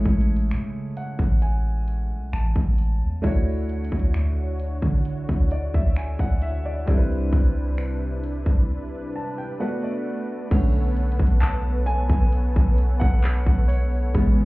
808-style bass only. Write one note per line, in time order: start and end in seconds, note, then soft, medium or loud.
0.06 0.53 A1 loud
0.52 1.16 C#3 loud
1.19 2.12 A1 loud
2.11 2.32 B1 loud
2.33 2.55 A1 loud
2.56 3.03 A1 loud
3.02 3.23 E2 loud
3.24 3.89 D2 loud
3.92 4.14 D2 loud
4.15 4.80 D2 loud
4.82 5.26 D3 medium
5.29 5.72 D2 medium
5.75 6.18 D2 loud
6.20 6.85 D2 loud
6.88 7.31 C2 loud
7.33 8.43 C2 loud
8.46 8.68 C2 medium
10.52 11.17 B1 loud
11.20 11.41 B1 loud
11.43 12.08 B1 loud
12.10 12.54 B1 medium
12.56 13.00 B1 loud
13.02 13.45 B1 loud
13.47 14.12 B1 loud
14.15 14.45 A1 loud